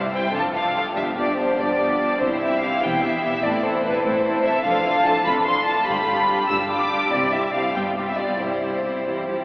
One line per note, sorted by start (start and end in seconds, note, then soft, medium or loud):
0.00 0.23 C2 medium
0.00 0.24 C2 medium
0.00 0.11 G3 soft
0.00 0.11 C4 soft
0.00 0.11 E4 soft
0.00 0.11 C5 soft
0.12 0.33 G3 soft
0.12 0.33 C4 soft
0.12 0.33 E4 soft
0.12 0.33 C5 soft
0.12 0.34 G5 medium
0.33 0.86 F1 soft
0.33 0.86 F2 medium
0.33 0.53 F3 soft
0.33 0.53 D4 soft
0.33 0.53 F4 soft
0.33 0.53 A4 soft
0.33 0.43 A5 medium
0.54 0.74 F3 soft
0.54 0.74 D4 soft
0.54 0.74 F4 soft
0.54 0.75 A4 soft
0.54 0.75 F5 medium
0.75 0.95 F3 soft
0.75 0.95 D4 soft
0.75 0.95 F4 soft
0.75 0.96 A4 soft
0.75 0.84 F5 medium
0.95 1.48 G1 medium
0.95 1.48 G2 medium
0.95 1.15 F3 soft
0.95 1.15 B3 soft
0.95 1.15 D4 soft
0.95 1.16 G4 soft
0.95 1.05 E5 medium
1.16 1.35 F3 soft
1.16 1.35 B3 soft
1.16 1.36 D4 soft
1.16 1.36 G4 soft
1.16 1.38 D5 medium
1.36 1.57 F3 soft
1.36 1.57 B3 soft
1.36 1.57 D4 soft
1.36 1.57 G4 soft
1.36 1.58 C5 medium
1.57 2.10 G1 medium
1.57 2.11 G2 medium
1.57 1.78 F3 soft
1.57 1.78 B3 soft
1.57 1.78 D4 soft
1.57 1.78 G4 soft
1.57 2.21 D5 medium
1.79 2.00 F3 soft
1.79 2.00 B3 soft
1.79 1.99 D4 soft
1.79 1.99 G4 soft
2.00 2.21 F3 soft
2.00 2.21 B3 soft
2.00 2.20 D4 soft
2.00 2.20 G4 soft
2.20 2.73 C2 medium
2.20 2.73 C3 medium
2.20 2.41 E3 soft
2.20 2.41 C4 soft
2.20 2.41 E4 soft
2.20 2.40 G4 soft
2.20 2.41 C5 medium
2.41 2.61 E3 soft
2.41 2.61 C4 soft
2.41 2.61 E4 soft
2.41 2.61 G4 soft
2.41 2.61 E5 medium
2.61 2.82 E3 soft
2.61 2.82 C4 soft
2.61 2.81 E4 soft
2.61 2.81 G4 soft
2.61 2.82 F5 medium
2.82 3.34 E1 medium
2.82 3.35 E2 medium
2.82 3.03 E3 soft
2.82 3.03 B3 soft
2.82 3.03 E4 soft
2.82 3.03 G4 soft
2.82 3.04 G5 medium
3.03 3.23 E3 soft
3.03 3.23 B3 soft
3.03 3.24 E4 soft
3.03 3.24 G4 soft
3.03 3.22 E5 medium
3.23 3.43 E3 soft
3.23 3.44 B3 soft
3.23 3.44 E4 soft
3.23 3.45 G4 soft
3.23 3.44 E5 medium
3.44 3.95 A1 medium
3.44 3.96 A2 medium
3.44 3.64 E3 medium
3.44 3.64 C4 medium
3.44 3.63 E4 medium
3.44 3.63 A4 soft
3.44 3.65 D5 medium
3.64 3.83 E3 soft
3.64 3.83 C4 soft
3.64 3.83 E4 soft
3.64 3.83 A4 soft
3.64 3.85 C5 medium
3.84 4.04 E3 soft
3.84 4.04 C4 soft
3.84 4.04 E4 soft
3.84 4.04 A4 soft
3.84 4.05 B4 medium
4.05 4.56 A1 medium
4.05 4.56 A2 medium
4.05 4.24 E3 medium
4.05 4.24 C4 medium
4.05 4.24 E4 soft
4.05 4.24 A4 medium
4.05 4.45 C5 medium
4.25 4.43 E3 soft
4.25 4.43 C4 soft
4.25 4.44 E4 soft
4.25 4.44 A4 soft
4.44 4.65 E3 soft
4.44 4.65 C4 soft
4.44 4.65 E4 soft
4.44 4.64 A4 medium
4.44 4.65 E5 medium
4.64 5.16 F1 medium
4.64 5.16 F2 medium
4.64 4.83 D3 medium
4.64 4.83 D4 soft
4.64 4.84 F4 soft
4.64 4.84 A4 soft
4.64 5.05 F5 medium
4.84 5.05 D3 medium
4.84 5.05 D4 soft
4.84 5.04 F4 medium
4.84 5.04 A4 medium
5.05 5.26 D3 soft
5.05 5.26 D4 soft
5.05 5.25 F4 soft
5.05 5.25 A4 soft
5.05 5.26 A5 medium
5.26 5.77 F1 medium
5.26 5.78 F2 medium
5.26 5.46 D3 soft
5.26 5.46 D4 medium
5.26 5.46 F4 soft
5.26 5.46 A4 soft
5.26 5.34 B5 medium
5.46 5.66 D3 medium
5.46 5.67 D4 soft
5.46 5.66 F4 soft
5.46 5.66 A4 soft
5.46 5.66 C6 medium
5.66 5.87 D3 soft
5.66 5.86 D4 soft
5.66 5.86 F4 soft
5.66 5.87 A4 soft
5.66 5.86 A5 medium
5.87 6.39 G1 medium
5.87 6.39 G2 medium
5.87 6.07 G3 medium
5.87 6.07 D4 medium
5.87 6.07 F4 soft
5.87 6.07 G4 soft
5.87 6.48 B5 medium
6.08 6.28 G3 soft
6.08 6.28 D4 soft
6.08 6.28 F4 soft
6.08 6.28 G4 soft
6.29 6.49 G3 soft
6.29 6.49 D4 soft
6.29 6.49 F4 soft
6.29 6.49 G4 soft
6.49 7.01 G1 medium
6.49 7.02 G2 medium
6.49 6.69 G3 soft
6.49 6.69 D4 soft
6.49 6.70 F4 soft
6.49 6.70 G4 soft
6.49 6.57 E6 medium
6.70 6.90 G3 soft
6.70 6.90 D4 soft
6.70 6.90 F4 soft
6.70 6.90 G4 soft
6.70 7.11 D6 medium
6.91 7.11 G3 soft
6.91 7.12 D4 soft
6.91 7.12 F4 soft
6.91 7.10 G4 soft
7.12 7.65 C2 medium
7.12 7.65 C3 medium
7.12 7.32 G3 soft
7.12 7.32 C4 soft
7.12 7.32 E4 soft
7.12 7.31 G4 soft
7.12 7.33 D5 medium
7.32 7.53 G3 soft
7.32 7.53 C4 soft
7.32 7.53 E4 soft
7.32 7.52 G4 soft
7.32 7.54 E5 medium
7.54 7.75 G3 soft
7.54 7.75 C4 soft
7.54 7.75 E4 soft
7.54 7.74 G4 soft
7.54 7.75 F5 medium
7.75 8.30 G1 medium
7.75 8.29 G2 medium
7.75 7.97 G3 soft
7.75 7.97 B3 soft
7.75 7.96 F4 soft
7.75 7.95 G4 soft
7.75 7.83 G5 medium
7.97 8.18 G3 soft
7.97 8.18 B3 soft
7.97 8.16 F4 soft
7.97 8.16 G4 soft
8.09 8.19 E5 soft
8.17 8.39 G3 soft
8.17 8.40 B3 soft
8.17 8.39 F4 soft
8.17 8.38 G4 soft
8.17 8.40 D5 medium
8.39 8.95 C2 medium
8.39 8.95 C3 soft
8.39 8.61 G3 soft
8.39 8.61 C4 soft
8.39 8.61 E4 soft
8.39 8.61 G4 soft
8.39 9.45 C5 soft
8.63 8.84 G3 soft
8.63 8.84 C4 soft
8.63 8.83 E4 soft
8.63 8.83 G4 soft
8.85 9.06 G3 soft
8.85 9.06 C4 soft
8.85 9.05 E4 soft
8.85 9.06 G4 soft
9.06 9.45 C2 soft
9.06 9.26 E3 soft
9.06 9.28 G3 soft
9.06 9.27 C4 soft
9.06 9.28 E4 soft
9.06 9.28 G4 soft
9.28 9.45 F3 soft
9.28 9.45 G3 soft
9.28 9.45 C4 soft
9.28 9.45 E4 soft
9.28 9.45 G4 soft